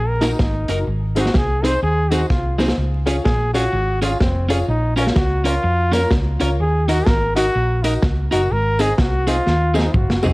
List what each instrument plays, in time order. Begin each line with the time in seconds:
Already playing: fingered electric bass A#1
0.08 trombone A#4
0.21 upright piano D#4 F#4 A#4, clean electric guitar D#4 F#4 A#4, trombone D#4, snare, closed hi-hat, tambourine
0.39 fingered electric bass G#1, trombone D#4, kick, snare
0.68 fingered electric bass F#1, upright piano D#4 F#4 A#4, clean electric guitar D#4 F#4 A#4, closed hi-hat, tambourine
0.87 fingered electric bass G#1
1.15 clean electric guitar C4 D#4 G#4, upright piano D#4 G#4 C5, trombone F#4, closed hi-hat, tambourine
1.26 snare
1.34 fingered electric bass C2, upright piano G#4 C5, trombone G#4, muted clean electric guitar stroke, kick, snare
1.62 clean electric guitar C4 D#4 G#4, upright piano D#4 G#4 C5, trombone C5, closed hi-hat, tambourine
1.83 fingered electric bass D#2, trombone G#4, muted clean electric guitar stroke
2.11 clean electric guitar C4 D#4 G#4, upright piano D#4 G#4 C5, trombone F#4, closed hi-hat, tambourine
2.30 fingered electric bass C2, trombone F4, upright piano G#4 C5, kick, snare
2.58 clean electric guitar C4 D#4 G#4, upright piano D#4 G#4 C5, snare, tambourine
2.68 snare
2.78 fingered electric bass C#2
3.06 clean electric guitar C#4 F4 G#4, upright piano F4 G#4 C#5, closed hi-hat, tambourine
3.24 fingered electric bass A#1, trombone G#4, upright piano G#4 C#5, muted clean electric guitar stroke, kick, snare
3.53 clean electric guitar C#4 F4 G#4, upright piano F4 G#4 C#5, trombone F#4, closed hi-hat, tambourine
3.72 fingered electric bass G#1, muted clean electric guitar stroke
4.02 clean electric guitar C#4 F4 G#4, upright piano F4 G#4 C#5, trombone F4, closed hi-hat, tambourine
4.20 fingered electric bass F1, trombone C4, upright piano G#4 C#5, kick, snare
4.49 clean electric guitar C#4 F4 G#4, upright piano F4 G#4 C#5, closed hi-hat, tambourine
4.68 fingered electric bass A#1, trombone D#4
4.96 clean electric guitar C#4 F4 A#4, trombone C#4, upright piano F4 A#4 C#5, closed hi-hat, tambourine
5.07 snare
5.15 fingered electric bass C#2, trombone F#4, upright piano A#4 C#5, muted clean electric guitar stroke, kick, snare
5.44 clean electric guitar C#4 F4 A#4, upright piano F4 A#4 C#5, trombone F4, closed hi-hat, tambourine
5.63 fingered electric bass F2, muted clean electric guitar stroke
5.92 clean electric guitar C#4 F4 A#4, upright piano F4 A#4 C#5, trombone A#4, snare, closed hi-hat, tambourine
6.11 fingered electric bass C#2, kick, snare
6.40 fingered electric bass C#2, clean electric guitar C#4 F4 A#4, upright piano F4 A#4 C#5, closed hi-hat, tambourine
6.60 fingered electric bass D#2, trombone G#4
6.88 clean electric guitar D#4 F#4 A#4, upright piano F#4 A#4 D#5, trombone F#4, closed hi-hat, tambourine
7.06 fingered electric bass G#1, upright piano A#4 D#5, trombone A#4, muted clean electric guitar stroke, kick, snare
7.35 clean electric guitar D#4 F#4 A#4, upright piano F#4 A#4 D#5, trombone F#4, closed hi-hat, tambourine
7.55 fingered electric bass A#1, muted clean electric guitar stroke
7.83 trombone D#4, clean electric guitar D#4 F#4 A#4, upright piano F#4 A#4 D#5, closed hi-hat, tambourine
8.02 fingered electric bass C#2, upright piano A#4 D#5, kick, snare
8.31 fingered electric bass F#1, clean electric guitar D#4 F#4 A#4, upright piano F#4 A#4 D#5, trombone F#4, closed hi-hat, tambourine
8.51 fingered electric bass G#1, trombone A#4
8.79 clean electric guitar C4 D#4 G#4, upright piano G#4 C5 D#5, trombone G#4, closed hi-hat, tambourine
8.96 fingered electric bass C2, trombone F#4 G#4, muted clean electric guitar stroke, kick, snare
9.27 clean electric guitar C4 D#4 G#4, trombone F4, upright piano G#4 C5 D#5, closed hi-hat, tambourine
9.46 fingered electric bass D#2, muted clean electric guitar stroke, snare
9.74 clean electric guitar C4 D#4 G#4, trombone D#4, upright piano G#4 C5 D#5, tambourine
9.79 snare
9.94 fingered electric bass F#1, trombone F#4, kick, mid tom
10.10 snare
10.23 fingered electric bass C2, clean electric guitar C4 D#4 G#4, upright piano G#4 C5 D#5, floor tom, tambourine